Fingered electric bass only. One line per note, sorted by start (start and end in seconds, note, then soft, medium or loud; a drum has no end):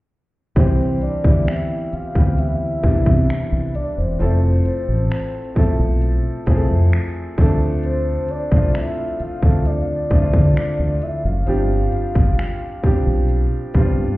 0.56 0.96 C2 loud
1.25 1.44 D2 medium
1.93 muted fingered electric bass stroke soft
2.16 2.55 D2 medium
2.84 3.03 C2 medium
3.07 3.26 C3 loud
3.30 muted fingered electric bass stroke soft
3.52 3.72 C2 medium
3.98 4.17 E1 medium
4.21 4.60 F1 loud
4.89 5.08 A1 medium
5.56 muted fingered electric bass stroke soft
5.79 6.19 B1 medium
6.47 6.67 C2 medium
6.70 6.90 F2 medium
7.38 8.17 D2 medium
8.52 8.72 C2 medium
9.20 muted fingered electric bass stroke soft
9.43 9.82 D2 medium
10.11 10.31 D2 medium
10.34 10.53 D3 medium
10.57 muted fingered electric bass stroke soft
10.79 10.99 D2 medium
11.25 11.44 F#1 medium
11.47 11.87 G1 loud
12.16 12.35 G1 medium
12.84 muted fingered electric bass stroke soft
13.07 13.46 B1 medium
13.75 13.94 C2 medium
13.98 14.17 G2 medium